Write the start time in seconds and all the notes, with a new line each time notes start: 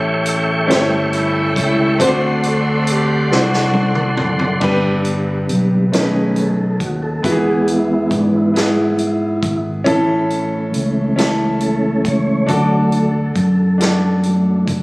Already playing: A1 A2 A3 C#4 E4 G4 A4 C#5 E5 G5 C#6
0.26 closed hi-hat
0.67 G1 A3 C#4 E4 G4 C5, closed hi-hat
0.72 snare
0.77 C#5
1.13 G3 C#4 E4, closed hi-hat
1.56 C#2, kick, closed hi-hat
1.98 D2 D3 A3 C4 D4 F#4 C5 D5 F#5 C6, kick, closed hi-hat
2.43 A4, closed hi-hat
2.87 G4, closed hi-hat
3.30 C2 A3 C4 D4 E4 F#4 C5, snare
3.39 F#4
3.53 snare
3.73 high tom
3.95 mid tom
4.17 F#1, mid tom
4.39 floor tom
4.60 G1 G2 D3 G3 B3 D4 G4 B4, kick, crash
5.05 closed hi-hat
5.49 B1, closed hi-hat
5.92 B1 B2 D#3 A3 C#4 D#4 G#4 A#4 B4, snare, closed hi-hat
6.02 B4
6.30 B4
6.36 A4, closed hi-hat
6.80 D#2 F#4, kick, closed hi-hat
7.03 A4
7.23 E2 E3 G#3 B3 E4 F#4 G#4, kick, closed hi-hat
7.32 G#4
7.68 E4, closed hi-hat
8.11 G#2 D4, kick, closed hi-hat
8.34 E4
8.54 B3 E4 G#4, snare, closed hi-hat
8.98 closed hi-hat
9.43 G#1, kick, closed hi-hat
9.84 A1 A2 E3 A3 C#4 E4 A4, kick, closed hi-hat
9.89 C#4
10.30 closed hi-hat
10.74 C#2, closed hi-hat
11.16 C#4 E4 A4, snare, closed hi-hat
11.60 A4, closed hi-hat
12.05 C#2 C#5, kick, closed hi-hat
12.46 D2 D3 D4 F#4 A4, kick, closed hi-hat
12.50 F#3 A3 D4 D5
12.92 A4, closed hi-hat
13.36 F#2, kick, closed hi-hat
13.78 D4 F#4 A4, snare, closed hi-hat
14.23 F#3 A3 D4, closed hi-hat
14.68 F#1, kick, closed hi-hat